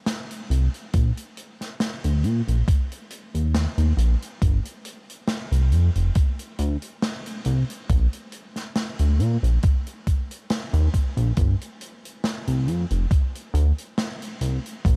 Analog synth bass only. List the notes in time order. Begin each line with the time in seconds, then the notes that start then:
0.50 C2
0.94 A#1
2.04 D2
2.24 A#2
2.48 A#1
3.35 D#2
3.78 D#2
3.97 A#1
4.42 G1
5.52 C2
5.72 F2
5.96 F1
6.59 D2
7.46 C2
7.89 A#1
8.99 D2
9.19 A#2
9.43 A#1
10.73 D#2
11.17 A#1
11.37 G1
12.48 C2
12.67 F2
12.91 F1
13.54 D2
14.41 C2
14.85 A#1